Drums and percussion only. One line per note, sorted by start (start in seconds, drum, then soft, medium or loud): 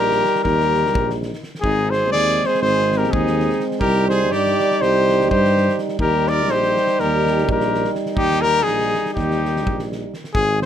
0.11 snare soft
0.25 snare soft
0.35 snare soft
0.45 kick medium
0.45 snare soft
0.60 snare soft
0.74 snare soft
0.86 snare soft
0.95 kick loud
1.10 snare soft
1.23 snare soft
1.33 snare soft
1.43 snare soft
1.55 snare soft
1.64 kick medium
1.93 snare soft
2.15 snare soft
2.29 snare soft
2.44 snare soft
2.55 snare soft
2.65 snare soft
2.92 snare soft
3.04 snare soft
3.13 kick loud
3.27 snare soft
3.40 snare soft
3.50 snare soft
3.60 snare soft
3.71 snare soft
3.81 kick medium
4.09 snare soft
4.32 snare soft
4.46 snare soft
4.60 snare soft
4.71 snare soft
4.82 snare soft
5.09 snare soft
5.20 snare soft
5.31 kick medium
5.45 snare soft
5.57 snare soft
5.68 snare soft
5.78 snare soft
5.88 snare soft
5.99 kick medium
6.27 snare soft
6.48 snare soft
6.62 snare soft
6.77 snare soft
6.87 snare soft
6.99 snare soft
7.26 snare soft
7.38 snare soft
7.49 kick medium
7.60 snare soft
7.74 snare soft
7.84 snare soft
7.95 snare soft
8.06 snare soft
8.17 kick loud
8.31 snare soft
8.45 snare soft
8.67 snare soft
8.80 snare soft
8.95 snare soft
9.06 snare soft
9.17 kick medium
9.17 snare soft
9.31 snare soft
9.45 snare soft
9.56 snare soft
9.67 kick medium
9.79 snare soft
9.92 snare soft
10.14 snare soft
10.24 snare soft
10.35 kick loud
10.62 snare soft